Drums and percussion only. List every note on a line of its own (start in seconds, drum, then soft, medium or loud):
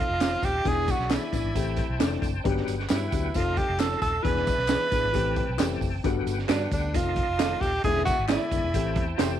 0.21 snare loud
0.21 clap loud
0.21 closed hi-hat medium
0.21 tambourine medium
0.43 kick medium
0.43 closed hi-hat medium
0.43 tambourine medium
0.65 kick loud
0.65 closed hi-hat medium
0.88 kick loud
0.88 closed hi-hat medium
0.88 tambourine medium
0.99 snare soft
1.10 snare loud
1.10 clap medium
1.10 closed hi-hat medium
1.10 tambourine medium
1.33 kick medium
1.33 closed hi-hat medium
1.33 tambourine medium
1.55 kick medium
1.55 closed hi-hat loud
1.55 tambourine medium
1.76 kick medium
1.76 closed hi-hat medium
1.76 tambourine soft
2.00 snare loud
2.00 clap loud
2.00 closed hi-hat medium
2.00 tambourine medium
2.12 snare soft
2.22 kick medium
2.22 closed hi-hat medium
2.22 tambourine soft
2.45 kick loud
2.45 closed hi-hat medium
2.57 snare soft
2.68 closed hi-hat medium
2.68 tambourine medium
2.79 snare soft
2.89 snare loud
2.89 clap medium
2.89 closed hi-hat medium
2.89 tambourine medium
3.12 kick medium
3.12 closed hi-hat medium
3.12 tambourine medium
3.34 kick medium
3.34 closed hi-hat loud
3.34 tambourine medium
3.57 kick medium
3.57 closed hi-hat medium
3.80 snare loud
3.80 clap loud
3.80 closed hi-hat medium
3.80 tambourine loud
3.92 snare soft
4.02 kick medium
4.02 closed hi-hat medium
4.02 tambourine medium
4.25 kick loud
4.25 closed hi-hat medium
4.36 snare soft
4.47 kick loud
4.47 closed hi-hat medium
4.47 tambourine medium
4.58 snare soft
4.68 snare loud
4.68 clap medium
4.68 closed hi-hat medium
4.68 tambourine medium
4.92 kick medium
4.92 closed hi-hat medium
4.92 tambourine medium
5.14 kick medium
5.14 closed hi-hat loud
5.14 tambourine medium
5.36 kick medium
5.36 closed hi-hat medium
5.59 snare loud
5.59 clap loud
5.59 closed hi-hat medium
5.59 tambourine loud
5.71 snare soft
5.81 kick medium
5.81 open hi-hat medium
5.81 tambourine soft
6.04 kick loud
6.04 closed hi-hat medium
6.04 tambourine soft
6.27 closed hi-hat medium
6.27 tambourine medium
6.39 snare soft
6.49 snare loud
6.49 clap medium
6.49 closed hi-hat medium
6.49 tambourine medium
6.71 kick medium
6.71 closed hi-hat medium
6.71 tambourine medium
6.94 kick medium
6.94 closed hi-hat loud
6.94 tambourine medium
7.16 kick medium
7.16 closed hi-hat medium
7.39 snare loud
7.39 clap medium
7.39 closed hi-hat medium
7.39 tambourine medium
7.61 kick medium
7.61 open hi-hat medium
7.61 tambourine soft
7.84 kick loud
7.84 closed hi-hat medium
7.84 tambourine soft
7.95 snare soft
8.06 kick medium
8.06 closed hi-hat medium
8.06 tambourine medium
8.29 snare loud
8.29 clap medium
8.29 closed hi-hat medium
8.29 tambourine medium
8.51 kick medium
8.51 closed hi-hat medium
8.51 tambourine medium
8.74 kick medium
8.74 closed hi-hat medium
8.74 tambourine medium
8.96 kick medium
8.96 closed hi-hat medium
9.19 snare loud
9.19 clap medium
9.19 closed hi-hat medium
9.19 tambourine loud